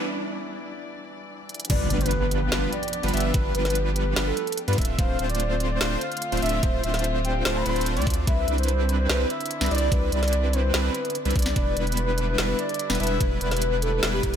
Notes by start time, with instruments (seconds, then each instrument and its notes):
Already playing: grand piano E3 B3 D4 B4, string section G3 D4 E4 D5
1.49 closed hi-hat
1.54 closed hi-hat
1.60 closed hi-hat
1.65 closed hi-hat
1.70 sub bass G1, string section F3 B3 D4 G4, analog polysynth G3 B3 D4 F4 B4, digital synth lead B4, soft synth lead D5, kick, closed hi-hat, crash, impact
1.90 sub bass G1, analog polysynth G3 B3 D4 F4 B4, digital synth lead B4, closed hi-hat
2.01 soft synth lead B4, closed hi-hat
2.06 closed hi-hat
2.11 closed hi-hat
2.31 closed hi-hat
2.42 soft synth lead B4
2.52 sub bass G1, analog polysynth G3 B3 D4 F4 B4, digital synth lead B4, snare, closed hi-hat
2.73 soft synth lead D5, closed hi-hat
2.83 closed hi-hat
2.88 closed hi-hat
2.93 closed hi-hat
3.03 sub bass G1, analog polysynth G3 B3 D4 F4 B4, digital synth lead B4, closed hi-hat
3.08 closed hi-hat
3.14 sub bass G1, analog polysynth G3 B3 D4 F4 E5, soft synth lead B4, digital synth lead E5, closed hi-hat
3.17 closed hi-hat
3.20 closed hi-hat
3.34 sub bass G1, analog polysynth G3 B3 D4 F4 B4, digital synth lead B4, kick, closed hi-hat
3.55 sub bass G1, analog polysynth G3 B3 D4 F4 B4, digital synth lead B4, soft synth lead B4, closed hi-hat
3.65 snare, closed hi-hat
3.70 closed hi-hat
3.75 closed hi-hat
3.96 soft synth lead B4, closed hi-hat
4.16 sub bass G1, analog polysynth G3 B3 D4 F4 B4, digital synth lead B4, snare, closed hi-hat
4.27 soft synth lead A4
4.37 closed hi-hat
4.47 closed hi-hat
4.52 closed hi-hat
4.58 closed hi-hat
4.68 sub bass G2, analog polysynth G3 B3 D4 F4 B4, digital synth lead B4, closed hi-hat
4.73 closed hi-hat
4.78 sub bass D1, string section D3 A3 C4 F4, analog polysynth A3 C4 D4 F4 E5, digital synth lead E5, kick, closed hi-hat
4.82 closed hi-hat
4.85 closed hi-hat
4.99 sub bass D1, analog polysynth A3 C4 D4 F4 C5, digital synth lead C5, soft synth lead F5, kick, closed hi-hat
5.19 sub bass D1, analog polysynth A3 C4 D4 F4 C5, digital synth lead C5, closed hi-hat
5.29 soft synth lead D5, closed hi-hat
5.35 closed hi-hat
5.40 closed hi-hat
5.60 closed hi-hat
5.71 soft synth lead D5
5.81 sub bass D1, analog polysynth A3 C4 D4 F4 C5, digital synth lead C5, snare, closed hi-hat
6.01 soft synth lead F5, closed hi-hat
6.12 closed hi-hat
6.17 closed hi-hat
6.22 closed hi-hat
6.32 sub bass D1, analog polysynth A3 C4 D4 F4 C5, digital synth lead C5, closed hi-hat
6.37 closed hi-hat
6.42 sub bass D1, analog polysynth A3 C4 D4 F4 E5, digital synth lead E5, soft synth lead E5, closed hi-hat
6.46 closed hi-hat
6.49 closed hi-hat
6.63 sub bass D1, analog polysynth A3 C4 D4 F4 C5, digital synth lead C5, kick, closed hi-hat
6.83 sub bass D1, analog polysynth A3 C4 D4 F4 C5, digital synth lead C5, soft synth lead E5, closed hi-hat
6.94 snare, closed hi-hat
6.99 closed hi-hat
7.04 closed hi-hat
7.25 soft synth lead G5, closed hi-hat
7.45 sub bass D1, analog polysynth A3 C4 D4 F4 C5, digital synth lead C5, snare, closed hi-hat
7.55 soft synth lead B5
7.66 sub bass D1, analog polysynth A3 C4 D4 F4 C5, digital synth lead C5, closed hi-hat
7.76 closed hi-hat
7.81 closed hi-hat
7.86 closed hi-hat
7.97 sub bass D2, analog polysynth A3 C4 D4 F4 D5, digital synth lead D5, closed hi-hat
8.02 closed hi-hat
8.07 kick, closed hi-hat
8.10 closed hi-hat
8.14 closed hi-hat
8.27 sub bass C2, analog polysynth G3 C4 D4 E4 B4, string section D4 E4, digital synth lead B4, soft synth lead E5, kick, closed hi-hat
8.48 sub bass C2, analog polysynth G3 C4 D4 E4 B4, digital synth lead B4, closed hi-hat
8.58 soft synth lead C5, closed hi-hat
8.63 closed hi-hat
8.68 closed hi-hat
8.89 closed hi-hat
8.99 soft synth lead C5
9.10 sub bass C2, analog polysynth G3 C4 D4 E4 B4, digital synth lead B4, snare, closed hi-hat
9.30 soft synth lead E5, closed hi-hat
9.41 closed hi-hat
9.46 closed hi-hat
9.51 closed hi-hat
9.61 sub bass C2, analog polysynth G3 C4 D4 E4 B4, digital synth lead B4, snare, closed hi-hat
9.66 closed hi-hat
9.71 sub bass C2, analog polysynth G3 C4 D4 E4 D5, digital synth lead D5, soft synth lead D5, closed hi-hat
9.75 closed hi-hat
9.78 closed hi-hat
9.92 sub bass C2, analog polysynth G3 C4 D4 E4 B4, digital synth lead B4, kick, closed hi-hat
10.12 sub bass C2, analog polysynth G3 C4 D4 E4 B4, digital synth lead B4, soft synth lead D5, closed hi-hat
10.23 snare, closed hi-hat
10.28 closed hi-hat
10.33 closed hi-hat
10.53 soft synth lead C5, closed hi-hat
10.74 sub bass C2, analog polysynth G3 C4 D4 E4 B4, digital synth lead B4, snare, closed hi-hat
10.84 soft synth lead B4
10.95 closed hi-hat
11.05 closed hi-hat
11.10 closed hi-hat
11.15 closed hi-hat
11.25 sub bass C2, analog polysynth G3 C4 D4 E4 B4, digital synth lead B4, closed hi-hat
11.31 closed hi-hat
11.36 sub bass C2, analog polysynth G3 C4 D4 E4 D5, digital synth lead D5, kick, closed hi-hat
11.39 closed hi-hat
11.42 snare, closed hi-hat
11.56 sub bass E1, string section G3 E4, analog polysynth G3 B3 D4 E4 B4, digital synth lead B4, soft synth lead D5, kick, closed hi-hat
11.77 sub bass E1, analog polysynth G3 B3 D4 E4 B4, digital synth lead B4, closed hi-hat
11.87 soft synth lead B4, closed hi-hat
11.92 closed hi-hat
11.97 closed hi-hat
12.18 closed hi-hat
12.28 soft synth lead B4
12.38 sub bass E1, analog polysynth G3 B3 D4 E4 B4, digital synth lead B4, snare, closed hi-hat
12.59 soft synth lead D5, closed hi-hat
12.69 closed hi-hat
12.74 closed hi-hat
12.79 closed hi-hat
12.90 sub bass E1, analog polysynth G3 B3 D4 E4 B4, digital synth lead B4, snare, closed hi-hat
12.95 closed hi-hat
13.00 sub bass E1, analog polysynth G3 B3 D4 E4 E5, soft synth lead B4, digital synth lead E5, closed hi-hat
13.03 closed hi-hat
13.07 closed hi-hat
13.21 sub bass E1, analog polysynth G3 B3 D4 E4 B4, digital synth lead B4, kick, closed hi-hat
13.41 sub bass E1, analog polysynth G3 B3 D4 E4 B4, soft synth lead B4, digital synth lead B4, closed hi-hat
13.51 snare, closed hi-hat
13.57 closed hi-hat
13.62 closed hi-hat
13.82 soft synth lead A4, closed hi-hat
14.03 sub bass E1, analog polysynth G3 B3 D4 E4 B4, digital synth lead B4, snare, closed hi-hat
14.13 soft synth lead G4
14.23 sub bass E1, analog polysynth G3 B3 D4 E4 B4, digital synth lead B4, kick, closed hi-hat